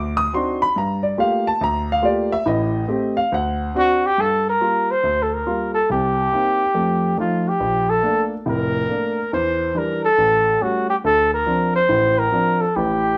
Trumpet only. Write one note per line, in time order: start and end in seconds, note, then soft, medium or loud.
3.78 4.07 F#4 loud
4.06 4.22 G4 loud
4.20 4.46 A4 medium
4.49 4.93 A#4 medium
4.91 5.24 C5 medium
5.22 5.35 A4 medium
5.34 5.74 A#4 medium
5.74 5.88 A4 medium
5.92 7.15 G4 medium
7.20 7.50 F4 medium
7.48 7.91 G4 medium
7.90 8.24 A4 medium
8.49 9.29 A#4 medium
9.33 9.79 C5 medium
9.78 10.04 A#4 medium
10.05 10.64 A4 medium
10.62 10.89 F#4 medium
10.90 10.96 G4 medium
11.05 11.30 A4 medium
11.34 11.72 A#4 medium
11.76 12.20 C5 medium
12.19 12.62 A#4 medium
12.61 12.77 A4 medium
12.76 13.18 G4 medium